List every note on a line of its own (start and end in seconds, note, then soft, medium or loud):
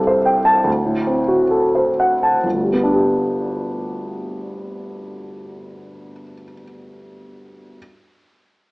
0.00 0.62 C2 soft
0.00 0.69 G2 soft
0.00 0.69 C4 soft
0.00 0.69 G4 soft
0.00 0.18 A4 soft
0.07 0.38 C5 soft
0.26 0.57 G5 soft
0.45 0.65 A5 soft
0.64 2.39 D2 soft
0.85 1.20 A2 soft
1.07 1.42 C4 soft
1.28 1.65 F#4 soft
1.51 1.89 A4 soft
1.75 2.14 C5 soft
2.00 2.36 F#5 soft
2.23 2.44 A5 soft
2.43 6.12 G1 soft
2.53 6.22 D2 soft
2.63 6.32 G3 soft
2.73 6.42 B3 soft
2.83 6.52 D4 soft
2.93 6.62 G4 soft